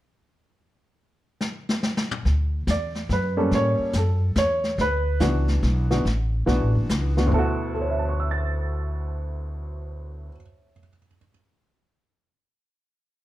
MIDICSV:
0, 0, Header, 1, 5, 480
1, 0, Start_track
1, 0, Key_signature, 2, "major"
1, 0, Tempo, 421941
1, 1125, Time_signature, 3, 2, 24, 8
1, 15068, End_track
2, 0, Start_track
2, 0, Title_t, "Upright piano"
2, 0, Program_c, 0, 0
2, 3076, Note_on_c, 0, 74, 68
2, 3505, Note_off_c, 0, 74, 0
2, 3556, Note_on_c, 0, 71, 58
2, 3833, Note_on_c, 0, 55, 59
2, 3834, Note_on_c, 0, 58, 49
2, 3837, Note_on_c, 0, 61, 54
2, 3843, Note_on_c, 0, 69, 60
2, 3985, Note_off_c, 0, 71, 0
2, 4039, Note_on_c, 0, 73, 85
2, 4446, Note_off_c, 0, 55, 0
2, 4447, Note_off_c, 0, 58, 0
2, 4448, Note_off_c, 0, 61, 0
2, 4451, Note_off_c, 0, 69, 0
2, 4467, Note_off_c, 0, 73, 0
2, 4522, Note_on_c, 0, 69, 50
2, 4949, Note_off_c, 0, 69, 0
2, 4987, Note_on_c, 0, 73, 81
2, 5421, Note_off_c, 0, 73, 0
2, 5472, Note_on_c, 0, 71, 73
2, 5904, Note_off_c, 0, 71, 0
2, 5919, Note_on_c, 0, 52, 53
2, 5919, Note_on_c, 0, 59, 48
2, 5925, Note_on_c, 0, 62, 49
2, 5929, Note_on_c, 0, 66, 60
2, 6652, Note_off_c, 0, 52, 0
2, 6652, Note_off_c, 0, 59, 0
2, 6655, Note_off_c, 0, 62, 0
2, 6657, Note_off_c, 0, 66, 0
2, 6718, Note_on_c, 0, 52, 49
2, 6718, Note_on_c, 0, 59, 46
2, 6722, Note_on_c, 0, 62, 48
2, 6722, Note_on_c, 0, 66, 53
2, 6867, Note_off_c, 0, 52, 0
2, 6867, Note_off_c, 0, 59, 0
2, 6869, Note_off_c, 0, 62, 0
2, 6869, Note_off_c, 0, 66, 0
2, 7352, Note_on_c, 0, 52, 55
2, 7355, Note_on_c, 0, 59, 51
2, 7361, Note_on_c, 0, 62, 50
2, 7365, Note_on_c, 0, 66, 65
2, 8090, Note_off_c, 0, 52, 0
2, 8092, Note_off_c, 0, 59, 0
2, 8095, Note_off_c, 0, 62, 0
2, 8097, Note_off_c, 0, 66, 0
2, 8156, Note_on_c, 0, 52, 40
2, 8159, Note_on_c, 0, 59, 39
2, 8162, Note_on_c, 0, 62, 41
2, 8163, Note_on_c, 0, 66, 49
2, 8264, Note_on_c, 0, 38, 54
2, 8307, Note_off_c, 0, 52, 0
2, 8308, Note_on_c, 0, 47, 51
2, 8309, Note_off_c, 0, 59, 0
2, 8310, Note_off_c, 0, 62, 0
2, 8311, Note_off_c, 0, 66, 0
2, 8350, Note_on_c, 0, 69, 73
2, 8352, Note_on_c, 0, 64, 52
2, 8400, Note_on_c, 0, 66, 68
2, 8790, Note_off_c, 0, 69, 0
2, 8807, Note_on_c, 0, 69, 40
2, 8889, Note_on_c, 0, 73, 38
2, 8987, Note_on_c, 0, 76, 35
2, 9089, Note_on_c, 0, 81, 36
2, 9202, Note_on_c, 0, 85, 33
2, 9325, Note_on_c, 0, 88, 32
2, 9456, Note_on_c, 0, 93, 30
2, 11687, Note_off_c, 0, 38, 0
2, 11731, Note_off_c, 0, 47, 0
2, 11775, Note_off_c, 0, 64, 0
2, 11823, Note_off_c, 0, 66, 0
2, 12185, Note_off_c, 0, 69, 0
2, 12266, Note_off_c, 0, 73, 0
2, 12364, Note_off_c, 0, 76, 0
2, 12467, Note_off_c, 0, 81, 0
2, 12579, Note_off_c, 0, 85, 0
2, 12702, Note_off_c, 0, 88, 0
2, 12833, Note_off_c, 0, 93, 0
2, 15068, End_track
3, 0, Start_track
3, 0, Title_t, "Upright bass"
3, 0, Program_c, 1, 32
3, 2562, Note_on_c, 1, 38, 73
3, 3026, Note_off_c, 1, 38, 0
3, 3040, Note_on_c, 1, 40, 78
3, 3505, Note_off_c, 1, 40, 0
3, 3521, Note_on_c, 1, 42, 77
3, 3985, Note_off_c, 1, 42, 0
3, 3998, Note_on_c, 1, 45, 72
3, 4290, Note_off_c, 1, 45, 0
3, 4477, Note_on_c, 1, 42, 77
3, 4944, Note_off_c, 1, 42, 0
3, 4956, Note_on_c, 1, 40, 80
3, 5424, Note_off_c, 1, 40, 0
3, 5440, Note_on_c, 1, 38, 78
3, 5906, Note_off_c, 1, 38, 0
3, 5920, Note_on_c, 1, 37, 79
3, 6387, Note_off_c, 1, 37, 0
3, 6402, Note_on_c, 1, 35, 82
3, 6868, Note_off_c, 1, 35, 0
3, 6885, Note_on_c, 1, 33, 75
3, 7350, Note_off_c, 1, 33, 0
3, 7365, Note_on_c, 1, 35, 76
3, 7514, Note_off_c, 1, 35, 0
3, 7514, Note_on_c, 1, 33, 49
3, 7672, Note_off_c, 1, 33, 0
3, 7679, Note_on_c, 1, 30, 55
3, 7831, Note_off_c, 1, 30, 0
3, 7843, Note_on_c, 1, 37, 80
3, 8311, Note_off_c, 1, 37, 0
3, 8324, Note_on_c, 1, 38, 83
3, 11702, Note_off_c, 1, 38, 0
3, 15068, End_track
4, 0, Start_track
4, 0, Title_t, "Muted upright bass strokes"
4, 4313, Note_on_c, 9, 29, 32
4, 4427, Note_off_c, 9, 29, 0
4, 15068, End_track
5, 0, Start_track
5, 0, Title_t, "Drums"
5, 1600, Note_on_c, 9, 38, 58
5, 1714, Note_off_c, 9, 38, 0
5, 1922, Note_on_c, 9, 38, 69
5, 2035, Note_off_c, 9, 38, 0
5, 2081, Note_on_c, 9, 38, 76
5, 2195, Note_off_c, 9, 38, 0
5, 2243, Note_on_c, 9, 38, 82
5, 2356, Note_off_c, 9, 38, 0
5, 2403, Note_on_c, 9, 45, 75
5, 2516, Note_off_c, 9, 45, 0
5, 2561, Note_on_c, 9, 36, 17
5, 2567, Note_on_c, 9, 25, 44
5, 2567, Note_on_c, 9, 38, 37
5, 2674, Note_off_c, 9, 36, 0
5, 2681, Note_off_c, 9, 38, 0
5, 3040, Note_on_c, 9, 36, 21
5, 3040, Note_on_c, 9, 44, 48
5, 3045, Note_on_c, 9, 38, 46
5, 3153, Note_off_c, 9, 44, 0
5, 3154, Note_off_c, 9, 36, 0
5, 3159, Note_off_c, 9, 38, 0
5, 3355, Note_on_c, 9, 38, 34
5, 3469, Note_off_c, 9, 38, 0
5, 3519, Note_on_c, 9, 36, 20
5, 3522, Note_on_c, 9, 38, 36
5, 3632, Note_off_c, 9, 36, 0
5, 3636, Note_off_c, 9, 38, 0
5, 3996, Note_off_c, 9, 25, 0
5, 3996, Note_on_c, 9, 25, 39
5, 3996, Note_on_c, 9, 38, 38
5, 3998, Note_on_c, 9, 36, 20
5, 4110, Note_off_c, 9, 38, 0
5, 4112, Note_off_c, 9, 36, 0
5, 4471, Note_on_c, 9, 44, 43
5, 4477, Note_on_c, 9, 38, 47
5, 4478, Note_on_c, 9, 36, 17
5, 4585, Note_off_c, 9, 44, 0
5, 4591, Note_off_c, 9, 38, 0
5, 4592, Note_off_c, 9, 36, 0
5, 4953, Note_on_c, 9, 44, 47
5, 4958, Note_on_c, 9, 36, 21
5, 4958, Note_on_c, 9, 38, 55
5, 5066, Note_off_c, 9, 44, 0
5, 5072, Note_off_c, 9, 36, 0
5, 5072, Note_off_c, 9, 38, 0
5, 5275, Note_on_c, 9, 38, 32
5, 5388, Note_off_c, 9, 38, 0
5, 5438, Note_on_c, 9, 36, 18
5, 5439, Note_off_c, 9, 25, 0
5, 5439, Note_on_c, 9, 25, 41
5, 5439, Note_on_c, 9, 38, 39
5, 5552, Note_off_c, 9, 36, 0
5, 5553, Note_off_c, 9, 38, 0
5, 5914, Note_on_c, 9, 44, 49
5, 5920, Note_on_c, 9, 36, 19
5, 5920, Note_on_c, 9, 38, 51
5, 6028, Note_off_c, 9, 44, 0
5, 6033, Note_off_c, 9, 36, 0
5, 6033, Note_off_c, 9, 38, 0
5, 6232, Note_on_c, 9, 38, 33
5, 6346, Note_off_c, 9, 38, 0
5, 6401, Note_on_c, 9, 36, 22
5, 6402, Note_on_c, 9, 38, 37
5, 6514, Note_off_c, 9, 36, 0
5, 6516, Note_off_c, 9, 38, 0
5, 6720, Note_on_c, 9, 38, 39
5, 6834, Note_off_c, 9, 38, 0
5, 6883, Note_on_c, 9, 36, 19
5, 6888, Note_off_c, 9, 25, 0
5, 6888, Note_on_c, 9, 25, 42
5, 6888, Note_on_c, 9, 38, 38
5, 6997, Note_off_c, 9, 36, 0
5, 7002, Note_off_c, 9, 38, 0
5, 7364, Note_on_c, 9, 36, 19
5, 7366, Note_on_c, 9, 38, 34
5, 7478, Note_off_c, 9, 36, 0
5, 7480, Note_off_c, 9, 38, 0
5, 7840, Note_on_c, 9, 44, 52
5, 7845, Note_on_c, 9, 36, 21
5, 7846, Note_on_c, 9, 38, 51
5, 7954, Note_off_c, 9, 44, 0
5, 7959, Note_off_c, 9, 36, 0
5, 7960, Note_off_c, 9, 38, 0
5, 8159, Note_on_c, 9, 38, 31
5, 8272, Note_off_c, 9, 38, 0
5, 8841, Note_off_c, 9, 25, 0
5, 15068, End_track
0, 0, End_of_file